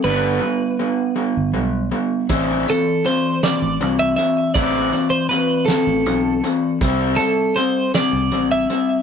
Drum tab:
HH |------|xxxxxx|xxxxxx|xxxxxx|
SD |------|---o--|---o--|---o--|
BD |------|o-----|o-----|o-----|